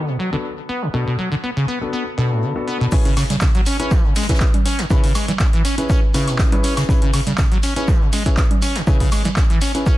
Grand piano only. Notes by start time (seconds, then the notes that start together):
0.33 B3 D4 F#4 A4
0.94 B3 D4 F#4 A4
1.81 B3 D4 F#4 A4
2.18 B3 D4 F#4 A4
2.56 B3 D4 F#4 A4
2.92 C#4 E4 G#4 B4
3.80 C#4 E4 G#4 B4
4.29 C#4 E4 G#4 B4
4.90 C#4 E4 G#4 B4
5.78 C#4 E4 G#4 B4
6.14 C#4 E4 G#4 B4
6.52 C#4 E4 G#4 B4
6.89 C#4 E4 G#4 B4
7.76 C#4 E4 G#4 B4
8.26 C#4 E4 G#4 B4
8.87 C#4 E4 G#4 B4
9.75 C#4 E4 G#4 B4